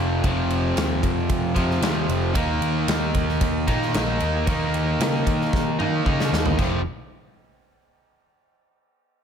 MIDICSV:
0, 0, Header, 1, 4, 480
1, 0, Start_track
1, 0, Tempo, 527704
1, 222, Time_signature, 4, 2, 24, 8
1, 8404, End_track
2, 0, Start_track
2, 0, Title_t, "Overdriven electric guitar"
2, 0, Program_c, 0, 29
2, 0, Note_on_c, 0, 41, 68
2, 0, Note_on_c, 0, 48, 69
2, 0, Note_on_c, 0, 53, 83
2, 194, Note_off_c, 0, 41, 0
2, 205, Note_on_c, 0, 41, 87
2, 207, Note_off_c, 0, 48, 0
2, 214, Note_off_c, 0, 53, 0
2, 223, Note_on_c, 0, 48, 98
2, 230, Note_on_c, 0, 53, 102
2, 1395, Note_off_c, 0, 53, 0
2, 1402, Note_off_c, 0, 41, 0
2, 1406, Note_on_c, 0, 53, 82
2, 1411, Note_off_c, 0, 48, 0
2, 1421, Note_on_c, 0, 48, 74
2, 1436, Note_on_c, 0, 41, 65
2, 1637, Note_off_c, 0, 41, 0
2, 1641, Note_off_c, 0, 53, 0
2, 1648, Note_on_c, 0, 41, 72
2, 1649, Note_off_c, 0, 48, 0
2, 1667, Note_on_c, 0, 48, 72
2, 1675, Note_on_c, 0, 53, 78
2, 2123, Note_off_c, 0, 41, 0
2, 2126, Note_off_c, 0, 48, 0
2, 2129, Note_on_c, 0, 51, 91
2, 2137, Note_off_c, 0, 53, 0
2, 2148, Note_on_c, 0, 58, 96
2, 2157, Note_on_c, 0, 63, 103
2, 3325, Note_off_c, 0, 51, 0
2, 3331, Note_off_c, 0, 63, 0
2, 3334, Note_off_c, 0, 58, 0
2, 3342, Note_on_c, 0, 63, 88
2, 3354, Note_on_c, 0, 58, 74
2, 3368, Note_on_c, 0, 51, 70
2, 3569, Note_off_c, 0, 51, 0
2, 3571, Note_off_c, 0, 63, 0
2, 3577, Note_off_c, 0, 58, 0
2, 3579, Note_on_c, 0, 51, 71
2, 3596, Note_on_c, 0, 58, 75
2, 3610, Note_on_c, 0, 63, 85
2, 4050, Note_off_c, 0, 51, 0
2, 4058, Note_off_c, 0, 58, 0
2, 4061, Note_on_c, 0, 51, 88
2, 4065, Note_off_c, 0, 63, 0
2, 4076, Note_on_c, 0, 58, 96
2, 4088, Note_on_c, 0, 63, 93
2, 5250, Note_off_c, 0, 51, 0
2, 5253, Note_off_c, 0, 63, 0
2, 5258, Note_off_c, 0, 58, 0
2, 5264, Note_on_c, 0, 63, 85
2, 5282, Note_on_c, 0, 58, 78
2, 5294, Note_on_c, 0, 51, 73
2, 5491, Note_off_c, 0, 51, 0
2, 5491, Note_off_c, 0, 63, 0
2, 5501, Note_off_c, 0, 58, 0
2, 5502, Note_on_c, 0, 51, 74
2, 5514, Note_on_c, 0, 58, 81
2, 5527, Note_on_c, 0, 63, 81
2, 5970, Note_off_c, 0, 51, 0
2, 5976, Note_off_c, 0, 58, 0
2, 5982, Note_on_c, 0, 41, 95
2, 5983, Note_off_c, 0, 63, 0
2, 5991, Note_on_c, 0, 48, 97
2, 5995, Note_on_c, 0, 53, 102
2, 6177, Note_off_c, 0, 41, 0
2, 6181, Note_off_c, 0, 48, 0
2, 6183, Note_off_c, 0, 53, 0
2, 8404, End_track
3, 0, Start_track
3, 0, Title_t, "Picked electric bass"
3, 0, Program_c, 1, 34
3, 0, Note_on_c, 1, 29, 82
3, 195, Note_off_c, 1, 29, 0
3, 216, Note_on_c, 1, 29, 82
3, 646, Note_off_c, 1, 29, 0
3, 696, Note_on_c, 1, 39, 87
3, 913, Note_off_c, 1, 39, 0
3, 937, Note_on_c, 1, 41, 81
3, 1153, Note_off_c, 1, 41, 0
3, 1181, Note_on_c, 1, 41, 90
3, 1609, Note_off_c, 1, 41, 0
3, 1654, Note_on_c, 1, 39, 85
3, 1872, Note_off_c, 1, 39, 0
3, 1899, Note_on_c, 1, 29, 92
3, 2115, Note_off_c, 1, 29, 0
3, 2138, Note_on_c, 1, 39, 87
3, 2355, Note_off_c, 1, 39, 0
3, 2379, Note_on_c, 1, 39, 86
3, 2596, Note_off_c, 1, 39, 0
3, 2617, Note_on_c, 1, 39, 87
3, 2835, Note_off_c, 1, 39, 0
3, 2859, Note_on_c, 1, 39, 85
3, 3076, Note_off_c, 1, 39, 0
3, 3102, Note_on_c, 1, 39, 85
3, 3318, Note_off_c, 1, 39, 0
3, 3344, Note_on_c, 1, 46, 94
3, 3559, Note_off_c, 1, 46, 0
3, 3589, Note_on_c, 1, 34, 88
3, 3802, Note_off_c, 1, 34, 0
3, 3828, Note_on_c, 1, 39, 92
3, 4041, Note_off_c, 1, 39, 0
3, 4069, Note_on_c, 1, 39, 92
3, 4495, Note_off_c, 1, 39, 0
3, 4543, Note_on_c, 1, 49, 83
3, 4759, Note_off_c, 1, 49, 0
3, 4790, Note_on_c, 1, 51, 84
3, 5002, Note_off_c, 1, 51, 0
3, 5031, Note_on_c, 1, 51, 89
3, 5455, Note_off_c, 1, 51, 0
3, 5512, Note_on_c, 1, 49, 88
3, 5723, Note_off_c, 1, 49, 0
3, 5748, Note_on_c, 1, 39, 91
3, 5960, Note_off_c, 1, 39, 0
3, 5992, Note_on_c, 1, 29, 97
3, 6213, Note_off_c, 1, 29, 0
3, 8404, End_track
4, 0, Start_track
4, 0, Title_t, "Drums"
4, 217, Note_on_c, 9, 36, 107
4, 218, Note_on_c, 9, 51, 82
4, 308, Note_off_c, 9, 36, 0
4, 309, Note_off_c, 9, 51, 0
4, 458, Note_on_c, 9, 51, 61
4, 549, Note_off_c, 9, 51, 0
4, 699, Note_on_c, 9, 51, 87
4, 709, Note_on_c, 9, 38, 118
4, 790, Note_off_c, 9, 51, 0
4, 800, Note_off_c, 9, 38, 0
4, 939, Note_on_c, 9, 36, 82
4, 941, Note_on_c, 9, 51, 65
4, 1030, Note_off_c, 9, 36, 0
4, 1032, Note_off_c, 9, 51, 0
4, 1178, Note_on_c, 9, 51, 85
4, 1179, Note_on_c, 9, 36, 100
4, 1269, Note_off_c, 9, 51, 0
4, 1270, Note_off_c, 9, 36, 0
4, 1419, Note_on_c, 9, 36, 83
4, 1420, Note_on_c, 9, 51, 64
4, 1510, Note_off_c, 9, 36, 0
4, 1510, Note_off_c, 9, 51, 0
4, 1551, Note_on_c, 9, 38, 33
4, 1642, Note_off_c, 9, 38, 0
4, 1658, Note_on_c, 9, 51, 83
4, 1668, Note_on_c, 9, 38, 100
4, 1749, Note_off_c, 9, 51, 0
4, 1759, Note_off_c, 9, 38, 0
4, 1904, Note_on_c, 9, 51, 69
4, 1995, Note_off_c, 9, 51, 0
4, 2140, Note_on_c, 9, 36, 109
4, 2140, Note_on_c, 9, 51, 97
4, 2231, Note_off_c, 9, 36, 0
4, 2231, Note_off_c, 9, 51, 0
4, 2382, Note_on_c, 9, 51, 70
4, 2473, Note_off_c, 9, 51, 0
4, 2620, Note_on_c, 9, 51, 106
4, 2630, Note_on_c, 9, 38, 113
4, 2711, Note_off_c, 9, 51, 0
4, 2721, Note_off_c, 9, 38, 0
4, 2860, Note_on_c, 9, 51, 68
4, 2862, Note_on_c, 9, 36, 82
4, 2951, Note_off_c, 9, 51, 0
4, 2953, Note_off_c, 9, 36, 0
4, 2990, Note_on_c, 9, 38, 32
4, 3081, Note_off_c, 9, 38, 0
4, 3100, Note_on_c, 9, 51, 99
4, 3102, Note_on_c, 9, 36, 103
4, 3191, Note_off_c, 9, 51, 0
4, 3193, Note_off_c, 9, 36, 0
4, 3344, Note_on_c, 9, 36, 86
4, 3344, Note_on_c, 9, 51, 71
4, 3435, Note_off_c, 9, 36, 0
4, 3435, Note_off_c, 9, 51, 0
4, 3477, Note_on_c, 9, 38, 34
4, 3568, Note_off_c, 9, 38, 0
4, 3586, Note_on_c, 9, 51, 86
4, 3596, Note_on_c, 9, 38, 110
4, 3677, Note_off_c, 9, 51, 0
4, 3687, Note_off_c, 9, 38, 0
4, 3823, Note_on_c, 9, 51, 65
4, 3914, Note_off_c, 9, 51, 0
4, 4067, Note_on_c, 9, 51, 90
4, 4068, Note_on_c, 9, 36, 112
4, 4158, Note_off_c, 9, 51, 0
4, 4159, Note_off_c, 9, 36, 0
4, 4311, Note_on_c, 9, 51, 67
4, 4402, Note_off_c, 9, 51, 0
4, 4552, Note_on_c, 9, 51, 100
4, 4562, Note_on_c, 9, 38, 112
4, 4643, Note_off_c, 9, 51, 0
4, 4653, Note_off_c, 9, 38, 0
4, 4791, Note_on_c, 9, 36, 81
4, 4791, Note_on_c, 9, 51, 71
4, 4882, Note_off_c, 9, 36, 0
4, 4882, Note_off_c, 9, 51, 0
4, 4923, Note_on_c, 9, 38, 33
4, 5014, Note_off_c, 9, 38, 0
4, 5031, Note_on_c, 9, 36, 108
4, 5044, Note_on_c, 9, 38, 62
4, 5122, Note_off_c, 9, 36, 0
4, 5135, Note_off_c, 9, 38, 0
4, 5274, Note_on_c, 9, 47, 73
4, 5365, Note_off_c, 9, 47, 0
4, 5513, Note_on_c, 9, 36, 84
4, 5604, Note_off_c, 9, 36, 0
4, 5642, Note_on_c, 9, 38, 74
4, 5733, Note_off_c, 9, 38, 0
4, 5765, Note_on_c, 9, 38, 96
4, 5856, Note_off_c, 9, 38, 0
4, 5872, Note_on_c, 9, 43, 82
4, 5963, Note_off_c, 9, 43, 0
4, 5992, Note_on_c, 9, 36, 98
4, 5995, Note_on_c, 9, 49, 86
4, 6083, Note_off_c, 9, 36, 0
4, 6086, Note_off_c, 9, 49, 0
4, 8404, End_track
0, 0, End_of_file